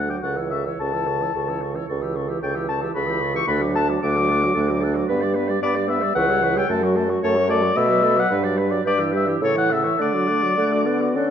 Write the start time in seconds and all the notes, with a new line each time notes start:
Already playing: D2 A3 A4 F#6
0.09 F#3 F#4 G5 D6
0.22 C#2 C#3 A4 F#5 C#6
0.36 E3 C#5 E6
0.50 C#3 A4 E5 C#6
0.65 E3 C#5 E6
0.79 C#2 C#3 A4 A5 C#6
0.93 E3 C#5 E6
1.07 C#3 A4 C#6
1.21 E3 C#5 E6
1.34 C#2 C#3 A4 C#6
1.48 E3 C#5 E6
1.61 C#3 A4 C#6
1.75 E3 C#5 E6
1.88 C#2 C#3 A4 C#6
2.02 E3 G4 E6
2.16 C#3 A4 C#6
2.28 E3 G4 E6
2.42 C#2 C#3 A4 G5 C#6
2.55 E3 G4 E6
2.68 C#3 A4 A5 C#6
2.81 E3 G4 E6
2.94 C#2 C#3 A4 B5 C#6
3.07 E3 G4 E6
3.20 C#3 A4 C#6
3.34 E3 G4 C#6 E6
3.47 D2 A3 A4 B5 F#6
3.61 F#3 F#4 D6
3.75 A3 A4 A5 F#6
3.89 F#3 F#4 D6
4.02 D2 A3 A4 D6 F#6
4.16 F#3 F#4 D6
4.29 A3 A4 F#6
4.41 F#3 F#4 D6
4.54 D2 A3 A4 F#6
4.68 F#3 F#4 D6
4.80 A3 A4 F#6
4.95 F#3 F#4 D6
5.08 G2 B3 B4 B5
5.21 G3 D5 D6
5.34 B3 B4 B5
5.48 G3 D5 D6
5.62 G2 B3 B4 D5 B5
5.75 G3 D5 D6
5.88 B3 B4 E5 B5
6.02 G3 D5 D6
6.15 C#2 E3 B4 F#5 C#6
6.28 G3 C#5 E6
6.42 E3 B4 C#6
6.55 G3 C#5 G5 E6
6.68 F#2 A3 A4 A5
6.82 F#3 F#4 C#6
6.96 A3 A4 A5
7.09 F#3 F#4 C#6
7.23 F#2 A3 A4 C#5 A5
7.36 F#3 F#4 C#6
7.49 A3 A4 D5 A5
7.63 F#3 F#4 C#6
7.75 B2 A3 A4 E5 B5
7.89 F#3 B4 D6
8.02 A3 A4 B5
8.16 F#3 B4 F#5 D6
8.30 G2 G3 B4 B5
8.43 F#3 D5 D6
8.57 G3 B4 B5
8.71 F#3 D5 D6
8.84 G2 G3 B4 D5 G6
8.98 E3 G4 E6
9.12 G3 B4 E5 G6
9.25 E3 G4 E6
9.40 A2 C#3 A4 E6
9.44 C#5
9.55 E3 C#5 F#5 C#6
9.70 C#3 A4 E5 E6
9.84 E3 C#5 C#6
9.97 D3 A3 A4 F#6
10.02 D5
10.13 F#3 F#4 D6
10.27 A3 A4 F#6
10.42 F#3 F#4 D6
10.57 D3 A3 A4 F#6
10.72 F#4 D6
10.86 B3 A4 F#6
11.01 F#4 D6
11.15 D3 C#4 A4 F#6